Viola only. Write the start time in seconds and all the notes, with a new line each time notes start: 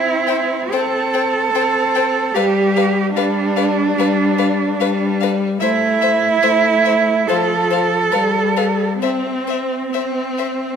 Already playing: C4
0.70 C4
1.52 C4
2.34 G3
3.15 G3
3.96 G3
4.77 G3
5.61 A3
6.40 A3
7.29 F3
8.13 G3
9.01 C4
9.93 C4